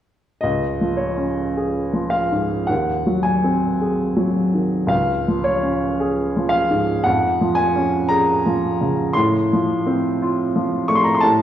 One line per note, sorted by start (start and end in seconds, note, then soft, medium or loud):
0.41 2.67 C#2 soft
0.41 0.98 D#5 medium
0.81 1.41 F3 soft
0.97 2.13 C#5 soft
1.18 1.79 C#4 soft
1.57 2.18 G#4 soft
1.93 2.55 F3 soft
2.10 2.68 F5 medium
2.32 2.70 G#2 soft
2.67 4.87 D#2 soft
2.67 3.24 F#5 medium
3.07 3.65 F#3 soft
3.23 4.34 G#5 medium
3.44 4.02 C4 soft
3.81 4.40 G#4 soft
4.16 4.76 F#3 soft
4.54 4.91 D#3 soft
4.87 7.00 C#2 soft
4.87 5.45 F5 medium
5.28 5.86 F3 soft
5.44 6.53 C#5 medium
5.63 6.21 C#4 soft
6.00 6.57 G#4 soft
6.37 6.93 F3 soft
6.49 7.04 F5 medium
6.71 7.06 G#2 soft
7.04 9.12 F2 soft
7.04 7.57 F#5 medium
7.41 7.97 F3 soft
7.55 8.09 G#5 medium
7.76 8.32 C#4 soft
8.09 8.67 G#4 soft
8.09 9.15 A#5 medium
8.46 9.02 F3 soft
8.81 9.16 C#3 soft
9.13 11.18 A2 medium
9.13 10.88 C6 medium
9.53 10.09 F3 soft
9.87 10.42 C4 soft
10.22 10.76 F4 soft
10.56 11.09 F3 soft
10.88 11.22 A3 soft
10.88 10.97 C#6 medium
10.95 11.05 C6 medium
11.04 11.13 A#5 medium
11.15 11.23 C6 medium
11.21 11.42 A2 soft
11.21 11.42 A5 medium